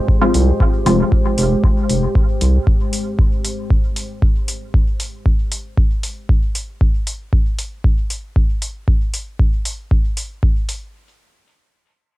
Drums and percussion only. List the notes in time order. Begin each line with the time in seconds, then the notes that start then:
0.09 kick
0.34 open hi-hat
0.60 kick
0.86 open hi-hat
1.12 kick
1.38 open hi-hat
1.64 kick
1.89 open hi-hat
2.15 kick
2.41 open hi-hat
2.67 kick
2.93 open hi-hat
3.19 kick
3.45 open hi-hat
3.71 kick
3.96 open hi-hat
4.22 kick
4.48 open hi-hat
4.74 kick
5.00 open hi-hat
5.26 kick
5.52 open hi-hat
5.77 kick
6.03 open hi-hat
6.29 kick
6.55 open hi-hat
6.81 kick
7.07 open hi-hat
7.33 kick
7.58 open hi-hat
7.84 kick
8.10 open hi-hat
8.36 kick
8.62 open hi-hat
8.88 kick
9.14 open hi-hat
9.40 kick
9.65 open hi-hat
9.91 kick
10.17 open hi-hat
10.43 kick
10.69 open hi-hat